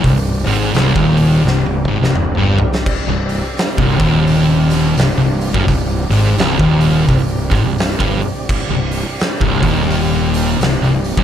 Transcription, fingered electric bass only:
X:1
M:4/4
L:1/16
Q:"Swing" 1/4=85
K:Cm
V:1 name="Fingered electric bass" clef=bass
C,,,2 A,,,2 C,,, E,,,3 C,,,2 A,,, C,,,2 G,,, z2 | z C,,,2 z2 C,,, E,,,6 C,,, C,,,2 ^F,,, | C,,,2 A,,,2 C,,, E,,,3 C,,,2 A,,, C,,,2 G,,, z2 | z C,,,2 z2 C,,, E,,,6 C,,, C,,,2 ^F,,, |]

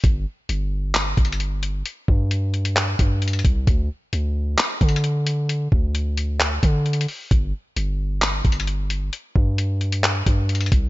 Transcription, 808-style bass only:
X:1
M:4/4
L:1/8
Q:1/4=132
K:Cdor
V:1 name="808-style bass" clef=bass
G,,, z G,,,3 G,,,3 | z G,,4 G,,2 C,, | D,, z D,,2 z D,3- | D, D,,4 D,2 z |
G,,, z G,,,3 G,,,3 | z G,,4 G,,2 C,, |]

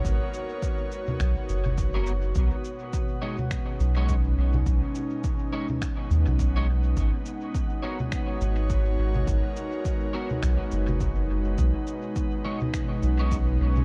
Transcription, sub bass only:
X:1
M:4/4
L:1/16
Q:"Swing 16ths" 1/4=104
K:G#m
V:1 name="Sub bass" clef=bass
G,,, z6 z B,,, z F,,,6 | B,,, z8 z B,,,4 B,,,2 | B,,, z8 z D,, B,,,4- B,,, | G,,, z8 z G,,,4 G,,,2 |
G,,, z6 z B,,, z F,,,6 | B,,, z8 z B,,,4 B,,,2 |]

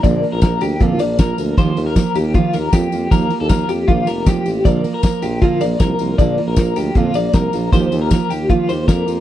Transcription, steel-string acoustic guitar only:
X:1
M:4/4
L:1/8
Q:1/4=156
K:Bb
V:1 name="Steel-string acoustic guitar"
[B,,D,F,B,DB] [F,B,DB] [F,B,DB] [F,B,DB] [B,,D,F,B,DB] [F,B,DB] [F,B,DB] [F,B,DB] | [E,F,B,FG] [B,FG] [F,B,FG] [B,FG] [E,F,B,FG] [B,FG] [F,B,FG] [B,FG] | [E,F,B,FG] [B,FG] [F,B,FG] [B,FG] [E,F,B,FG] [B,FG] [F,B,FG] [B,FG] | [B,,D,F,B,FB] [F,B,FB] [F,B,FB] [F,B,FB] [B,,D,F,B,FB] [F,B,FB] [F,B,FB] [F,B,FB] |
[B,,D,F,B,FB] [F,B,FB] [F,B,FB] [F,B,FB] [B,,D,F,B,FB] [F,B,FB] [F,B,FB] [F,B,FB] | [E,F,B,FG] [B,FG] [F,B,FG] [B,FG] [E,F,B,FG] [B,FG] [F,B,FG] [B,FG] |]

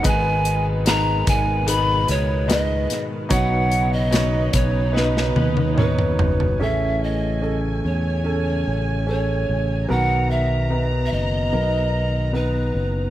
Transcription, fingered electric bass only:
X:1
M:4/4
L:1/8
Q:1/4=74
K:B
V:1 name="Fingered electric bass" clef=bass
G,,,3 G,,,2 C,,2 z | B,,,3 B,,,2 D,,2 F,,, | =A,,,3 E,,2 A,,,2 A,,, | B,,,3 F,,, B,,,3 F,,, |]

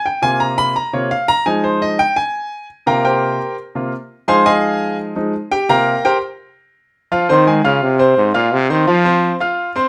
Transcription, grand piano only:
X:1
M:4/4
L:1/8
Q:1/4=170
K:Fm
V:1 name="Grand piano"
g a b =b _b d f b | a c e g a3 z | [Bfgb] [GBcg]3 z4 | [cfac'] [Aefa]3 z3 [Gg] |
[Bfgb]2 [GBcg] z4 z | [F,Ff] [Ccc'] [A,Aa] [Fff']2 [Ccc']2 [Fff']- | [Fff'] [Ccc'] [F,Ff] [Ccc']2 [Fff']2 [Ccc'] |]
V:2 name="Grand piano"
z [C,B,F]3 z [C,B,F] z2 | [F,A,E]3 z4 z | [C,B,F]3 z2 [C,B,F] z2 | [F,A,E]4- [F,A,E] [F,A,E] z2 |
[C,B,F] z6 z | z8 | z8 |]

